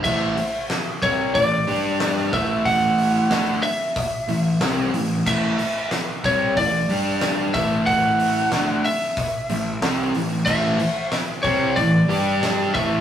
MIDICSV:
0, 0, Header, 1, 7, 480
1, 0, Start_track
1, 0, Tempo, 651466
1, 35, Time_signature, 4, 2, 24, 8
1, 9584, End_track
2, 0, Start_track
2, 0, Title_t, "Lead electric guitar"
2, 0, Program_c, 0, 29
2, 29, Note_on_c, 0, 76, 94
2, 483, Note_off_c, 0, 76, 0
2, 758, Note_on_c, 0, 73, 87
2, 992, Note_off_c, 0, 73, 0
2, 995, Note_on_c, 0, 74, 100
2, 1720, Note_off_c, 0, 74, 0
2, 1723, Note_on_c, 0, 76, 87
2, 1955, Note_on_c, 0, 78, 104
2, 1967, Note_off_c, 0, 76, 0
2, 2674, Note_on_c, 0, 76, 107
2, 2697, Note_off_c, 0, 78, 0
2, 3605, Note_off_c, 0, 76, 0
2, 3887, Note_on_c, 0, 76, 96
2, 4332, Note_off_c, 0, 76, 0
2, 4609, Note_on_c, 0, 73, 85
2, 4826, Note_off_c, 0, 73, 0
2, 4841, Note_on_c, 0, 74, 94
2, 5551, Note_off_c, 0, 74, 0
2, 5554, Note_on_c, 0, 76, 90
2, 5793, Note_on_c, 0, 78, 106
2, 5802, Note_off_c, 0, 76, 0
2, 6524, Note_on_c, 0, 76, 94
2, 6536, Note_off_c, 0, 78, 0
2, 7450, Note_off_c, 0, 76, 0
2, 7705, Note_on_c, 0, 76, 106
2, 8160, Note_off_c, 0, 76, 0
2, 8420, Note_on_c, 0, 73, 79
2, 8663, Note_off_c, 0, 73, 0
2, 8666, Note_on_c, 0, 74, 96
2, 9386, Note_off_c, 0, 74, 0
2, 9389, Note_on_c, 0, 76, 93
2, 9584, Note_off_c, 0, 76, 0
2, 9584, End_track
3, 0, Start_track
3, 0, Title_t, "Distorted electric guitar"
3, 0, Program_c, 1, 30
3, 28, Note_on_c, 1, 45, 97
3, 31, Note_on_c, 1, 52, 93
3, 37, Note_on_c, 1, 57, 107
3, 260, Note_off_c, 1, 45, 0
3, 266, Note_off_c, 1, 52, 0
3, 269, Note_off_c, 1, 57, 0
3, 752, Note_on_c, 1, 48, 96
3, 757, Note_on_c, 1, 55, 93
3, 761, Note_on_c, 1, 60, 101
3, 986, Note_off_c, 1, 48, 0
3, 989, Note_off_c, 1, 55, 0
3, 989, Note_on_c, 1, 45, 63
3, 991, Note_off_c, 1, 60, 0
3, 992, Note_on_c, 1, 52, 73
3, 1185, Note_off_c, 1, 45, 0
3, 1186, Note_off_c, 1, 52, 0
3, 1231, Note_on_c, 1, 55, 85
3, 1236, Note_on_c, 1, 62, 98
3, 1242, Note_on_c, 1, 67, 101
3, 1706, Note_off_c, 1, 55, 0
3, 1708, Note_on_c, 1, 45, 88
3, 1709, Note_off_c, 1, 62, 0
3, 1712, Note_off_c, 1, 67, 0
3, 1714, Note_on_c, 1, 52, 87
3, 1720, Note_on_c, 1, 57, 104
3, 2425, Note_off_c, 1, 45, 0
3, 2425, Note_off_c, 1, 57, 0
3, 2428, Note_off_c, 1, 52, 0
3, 2430, Note_on_c, 1, 50, 99
3, 2434, Note_on_c, 1, 57, 106
3, 2439, Note_on_c, 1, 62, 109
3, 2666, Note_off_c, 1, 50, 0
3, 2668, Note_off_c, 1, 57, 0
3, 2671, Note_off_c, 1, 62, 0
3, 3158, Note_on_c, 1, 45, 67
3, 3161, Note_on_c, 1, 52, 76
3, 3349, Note_off_c, 1, 45, 0
3, 3351, Note_off_c, 1, 52, 0
3, 3395, Note_on_c, 1, 48, 84
3, 3398, Note_on_c, 1, 55, 89
3, 3406, Note_on_c, 1, 60, 106
3, 3628, Note_off_c, 1, 48, 0
3, 3630, Note_off_c, 1, 55, 0
3, 3634, Note_off_c, 1, 60, 0
3, 3641, Note_on_c, 1, 45, 60
3, 3643, Note_on_c, 1, 52, 64
3, 3830, Note_off_c, 1, 45, 0
3, 3832, Note_off_c, 1, 52, 0
3, 3878, Note_on_c, 1, 45, 97
3, 3882, Note_on_c, 1, 52, 96
3, 3888, Note_on_c, 1, 57, 110
3, 4110, Note_off_c, 1, 45, 0
3, 4112, Note_off_c, 1, 52, 0
3, 4115, Note_off_c, 1, 57, 0
3, 4597, Note_on_c, 1, 48, 84
3, 4605, Note_on_c, 1, 55, 86
3, 4608, Note_on_c, 1, 60, 95
3, 4829, Note_off_c, 1, 48, 0
3, 4833, Note_off_c, 1, 55, 0
3, 4835, Note_off_c, 1, 60, 0
3, 4839, Note_on_c, 1, 45, 69
3, 4842, Note_on_c, 1, 52, 79
3, 5029, Note_off_c, 1, 45, 0
3, 5031, Note_off_c, 1, 52, 0
3, 5079, Note_on_c, 1, 55, 92
3, 5083, Note_on_c, 1, 62, 100
3, 5090, Note_on_c, 1, 67, 113
3, 5550, Note_off_c, 1, 55, 0
3, 5552, Note_off_c, 1, 62, 0
3, 5555, Note_off_c, 1, 67, 0
3, 5562, Note_on_c, 1, 45, 95
3, 5568, Note_on_c, 1, 52, 87
3, 5571, Note_on_c, 1, 57, 91
3, 6271, Note_off_c, 1, 45, 0
3, 6274, Note_off_c, 1, 52, 0
3, 6276, Note_off_c, 1, 57, 0
3, 6281, Note_on_c, 1, 50, 95
3, 6286, Note_on_c, 1, 57, 107
3, 6291, Note_on_c, 1, 62, 110
3, 6511, Note_off_c, 1, 50, 0
3, 6513, Note_off_c, 1, 57, 0
3, 6516, Note_off_c, 1, 62, 0
3, 6998, Note_on_c, 1, 45, 57
3, 7003, Note_on_c, 1, 52, 76
3, 7188, Note_off_c, 1, 45, 0
3, 7191, Note_off_c, 1, 52, 0
3, 7236, Note_on_c, 1, 48, 85
3, 7241, Note_on_c, 1, 55, 84
3, 7244, Note_on_c, 1, 60, 92
3, 7468, Note_off_c, 1, 48, 0
3, 7470, Note_off_c, 1, 55, 0
3, 7472, Note_off_c, 1, 60, 0
3, 7475, Note_on_c, 1, 45, 58
3, 7479, Note_on_c, 1, 52, 68
3, 7667, Note_off_c, 1, 45, 0
3, 7669, Note_off_c, 1, 52, 0
3, 7713, Note_on_c, 1, 45, 91
3, 7717, Note_on_c, 1, 52, 109
3, 7723, Note_on_c, 1, 57, 97
3, 7946, Note_off_c, 1, 45, 0
3, 7949, Note_off_c, 1, 52, 0
3, 7951, Note_off_c, 1, 57, 0
3, 8433, Note_on_c, 1, 48, 92
3, 8438, Note_on_c, 1, 55, 85
3, 8443, Note_on_c, 1, 60, 101
3, 8666, Note_off_c, 1, 48, 0
3, 8669, Note_off_c, 1, 55, 0
3, 8672, Note_off_c, 1, 60, 0
3, 8676, Note_on_c, 1, 45, 64
3, 8678, Note_on_c, 1, 52, 63
3, 8867, Note_off_c, 1, 45, 0
3, 8868, Note_off_c, 1, 52, 0
3, 8905, Note_on_c, 1, 55, 93
3, 8912, Note_on_c, 1, 62, 98
3, 8916, Note_on_c, 1, 67, 101
3, 9382, Note_off_c, 1, 55, 0
3, 9386, Note_off_c, 1, 62, 0
3, 9387, Note_on_c, 1, 45, 92
3, 9388, Note_off_c, 1, 67, 0
3, 9393, Note_on_c, 1, 52, 90
3, 9395, Note_on_c, 1, 57, 98
3, 9584, Note_off_c, 1, 45, 0
3, 9584, Note_off_c, 1, 52, 0
3, 9584, Note_off_c, 1, 57, 0
3, 9584, End_track
4, 0, Start_track
4, 0, Title_t, "Picked electric bass"
4, 0, Program_c, 2, 34
4, 34, Note_on_c, 2, 33, 90
4, 258, Note_off_c, 2, 33, 0
4, 755, Note_on_c, 2, 36, 78
4, 979, Note_off_c, 2, 36, 0
4, 992, Note_on_c, 2, 33, 80
4, 1217, Note_off_c, 2, 33, 0
4, 1228, Note_on_c, 2, 43, 86
4, 1683, Note_off_c, 2, 43, 0
4, 1714, Note_on_c, 2, 33, 88
4, 2406, Note_off_c, 2, 33, 0
4, 2431, Note_on_c, 2, 38, 92
4, 2657, Note_off_c, 2, 38, 0
4, 3150, Note_on_c, 2, 33, 84
4, 3376, Note_off_c, 2, 33, 0
4, 3389, Note_on_c, 2, 36, 106
4, 3616, Note_off_c, 2, 36, 0
4, 3630, Note_on_c, 2, 33, 86
4, 3856, Note_off_c, 2, 33, 0
4, 3876, Note_on_c, 2, 33, 83
4, 4099, Note_off_c, 2, 33, 0
4, 4600, Note_on_c, 2, 36, 82
4, 4821, Note_off_c, 2, 36, 0
4, 4838, Note_on_c, 2, 33, 80
4, 5060, Note_off_c, 2, 33, 0
4, 5070, Note_on_c, 2, 43, 98
4, 5523, Note_off_c, 2, 43, 0
4, 5558, Note_on_c, 2, 33, 101
4, 6247, Note_off_c, 2, 33, 0
4, 6270, Note_on_c, 2, 38, 95
4, 6495, Note_off_c, 2, 38, 0
4, 6994, Note_on_c, 2, 33, 76
4, 7217, Note_off_c, 2, 33, 0
4, 7231, Note_on_c, 2, 36, 99
4, 7456, Note_off_c, 2, 36, 0
4, 7469, Note_on_c, 2, 33, 78
4, 7695, Note_off_c, 2, 33, 0
4, 7712, Note_on_c, 2, 33, 88
4, 7937, Note_off_c, 2, 33, 0
4, 8429, Note_on_c, 2, 36, 87
4, 8655, Note_off_c, 2, 36, 0
4, 8670, Note_on_c, 2, 33, 78
4, 8895, Note_off_c, 2, 33, 0
4, 8902, Note_on_c, 2, 43, 86
4, 9358, Note_off_c, 2, 43, 0
4, 9391, Note_on_c, 2, 33, 101
4, 9584, Note_off_c, 2, 33, 0
4, 9584, End_track
5, 0, Start_track
5, 0, Title_t, "Muted distorted electric guitar strokes"
5, 269, Note_on_c, 9, 29, 58
5, 342, Note_off_c, 9, 29, 0
5, 4119, Note_on_c, 9, 29, 64
5, 4193, Note_off_c, 9, 29, 0
5, 7959, Note_on_c, 9, 29, 64
5, 8033, Note_off_c, 9, 29, 0
5, 9584, End_track
6, 0, Start_track
6, 0, Title_t, "Muted picked electric bass strokes"
6, 270, Note_on_c, 9, 29, 38
6, 343, Note_off_c, 9, 29, 0
6, 4118, Note_on_c, 9, 29, 40
6, 4192, Note_off_c, 9, 29, 0
6, 7946, Note_on_c, 9, 29, 37
6, 8020, Note_off_c, 9, 29, 0
6, 9584, End_track
7, 0, Start_track
7, 0, Title_t, "Drums"
7, 34, Note_on_c, 9, 36, 101
7, 37, Note_on_c, 9, 49, 108
7, 108, Note_off_c, 9, 36, 0
7, 111, Note_off_c, 9, 49, 0
7, 276, Note_on_c, 9, 46, 66
7, 350, Note_off_c, 9, 46, 0
7, 515, Note_on_c, 9, 38, 104
7, 515, Note_on_c, 9, 46, 64
7, 588, Note_off_c, 9, 38, 0
7, 588, Note_off_c, 9, 46, 0
7, 755, Note_on_c, 9, 36, 103
7, 756, Note_on_c, 9, 46, 53
7, 828, Note_off_c, 9, 36, 0
7, 829, Note_off_c, 9, 46, 0
7, 995, Note_on_c, 9, 36, 101
7, 995, Note_on_c, 9, 46, 79
7, 1069, Note_off_c, 9, 36, 0
7, 1069, Note_off_c, 9, 46, 0
7, 1235, Note_on_c, 9, 46, 57
7, 1308, Note_off_c, 9, 46, 0
7, 1476, Note_on_c, 9, 38, 114
7, 1476, Note_on_c, 9, 46, 85
7, 1550, Note_off_c, 9, 38, 0
7, 1550, Note_off_c, 9, 46, 0
7, 1600, Note_on_c, 9, 38, 32
7, 1673, Note_off_c, 9, 38, 0
7, 1716, Note_on_c, 9, 46, 62
7, 1717, Note_on_c, 9, 36, 116
7, 1790, Note_off_c, 9, 36, 0
7, 1790, Note_off_c, 9, 46, 0
7, 1957, Note_on_c, 9, 36, 97
7, 1958, Note_on_c, 9, 46, 80
7, 2031, Note_off_c, 9, 36, 0
7, 2032, Note_off_c, 9, 46, 0
7, 2199, Note_on_c, 9, 46, 63
7, 2273, Note_off_c, 9, 46, 0
7, 2438, Note_on_c, 9, 38, 102
7, 2438, Note_on_c, 9, 46, 86
7, 2511, Note_off_c, 9, 38, 0
7, 2511, Note_off_c, 9, 46, 0
7, 2682, Note_on_c, 9, 46, 67
7, 2755, Note_off_c, 9, 46, 0
7, 2918, Note_on_c, 9, 46, 100
7, 2919, Note_on_c, 9, 36, 121
7, 2991, Note_off_c, 9, 46, 0
7, 2993, Note_off_c, 9, 36, 0
7, 3158, Note_on_c, 9, 46, 68
7, 3232, Note_off_c, 9, 46, 0
7, 3396, Note_on_c, 9, 38, 116
7, 3396, Note_on_c, 9, 46, 86
7, 3470, Note_off_c, 9, 38, 0
7, 3470, Note_off_c, 9, 46, 0
7, 3640, Note_on_c, 9, 46, 70
7, 3714, Note_off_c, 9, 46, 0
7, 3878, Note_on_c, 9, 57, 106
7, 3879, Note_on_c, 9, 36, 90
7, 3952, Note_off_c, 9, 57, 0
7, 3953, Note_off_c, 9, 36, 0
7, 4118, Note_on_c, 9, 46, 67
7, 4192, Note_off_c, 9, 46, 0
7, 4356, Note_on_c, 9, 38, 102
7, 4356, Note_on_c, 9, 46, 78
7, 4430, Note_off_c, 9, 38, 0
7, 4430, Note_off_c, 9, 46, 0
7, 4600, Note_on_c, 9, 36, 115
7, 4603, Note_on_c, 9, 46, 58
7, 4674, Note_off_c, 9, 36, 0
7, 4676, Note_off_c, 9, 46, 0
7, 4840, Note_on_c, 9, 36, 104
7, 4840, Note_on_c, 9, 46, 94
7, 4914, Note_off_c, 9, 36, 0
7, 4914, Note_off_c, 9, 46, 0
7, 5082, Note_on_c, 9, 46, 67
7, 5156, Note_off_c, 9, 46, 0
7, 5316, Note_on_c, 9, 38, 121
7, 5316, Note_on_c, 9, 46, 81
7, 5389, Note_off_c, 9, 38, 0
7, 5389, Note_off_c, 9, 46, 0
7, 5557, Note_on_c, 9, 46, 65
7, 5559, Note_on_c, 9, 36, 117
7, 5630, Note_off_c, 9, 46, 0
7, 5633, Note_off_c, 9, 36, 0
7, 5798, Note_on_c, 9, 46, 75
7, 5799, Note_on_c, 9, 36, 105
7, 5872, Note_off_c, 9, 46, 0
7, 5873, Note_off_c, 9, 36, 0
7, 6040, Note_on_c, 9, 46, 64
7, 6114, Note_off_c, 9, 46, 0
7, 6276, Note_on_c, 9, 38, 100
7, 6276, Note_on_c, 9, 46, 77
7, 6350, Note_off_c, 9, 38, 0
7, 6350, Note_off_c, 9, 46, 0
7, 6519, Note_on_c, 9, 46, 66
7, 6593, Note_off_c, 9, 46, 0
7, 6756, Note_on_c, 9, 46, 91
7, 6757, Note_on_c, 9, 36, 109
7, 6829, Note_off_c, 9, 46, 0
7, 6831, Note_off_c, 9, 36, 0
7, 6997, Note_on_c, 9, 46, 67
7, 7070, Note_off_c, 9, 46, 0
7, 7238, Note_on_c, 9, 38, 126
7, 7238, Note_on_c, 9, 46, 89
7, 7312, Note_off_c, 9, 38, 0
7, 7312, Note_off_c, 9, 46, 0
7, 7475, Note_on_c, 9, 46, 66
7, 7548, Note_off_c, 9, 46, 0
7, 7713, Note_on_c, 9, 49, 107
7, 7714, Note_on_c, 9, 36, 109
7, 7787, Note_off_c, 9, 49, 0
7, 7788, Note_off_c, 9, 36, 0
7, 7953, Note_on_c, 9, 46, 66
7, 8027, Note_off_c, 9, 46, 0
7, 8191, Note_on_c, 9, 38, 104
7, 8191, Note_on_c, 9, 46, 81
7, 8265, Note_off_c, 9, 38, 0
7, 8265, Note_off_c, 9, 46, 0
7, 8433, Note_on_c, 9, 36, 111
7, 8436, Note_on_c, 9, 46, 60
7, 8507, Note_off_c, 9, 36, 0
7, 8510, Note_off_c, 9, 46, 0
7, 8673, Note_on_c, 9, 36, 99
7, 8674, Note_on_c, 9, 46, 80
7, 8746, Note_off_c, 9, 36, 0
7, 8748, Note_off_c, 9, 46, 0
7, 8918, Note_on_c, 9, 46, 63
7, 8991, Note_off_c, 9, 46, 0
7, 9158, Note_on_c, 9, 38, 110
7, 9158, Note_on_c, 9, 46, 87
7, 9232, Note_off_c, 9, 38, 0
7, 9232, Note_off_c, 9, 46, 0
7, 9393, Note_on_c, 9, 36, 126
7, 9397, Note_on_c, 9, 46, 65
7, 9467, Note_off_c, 9, 36, 0
7, 9470, Note_off_c, 9, 46, 0
7, 9584, End_track
0, 0, End_of_file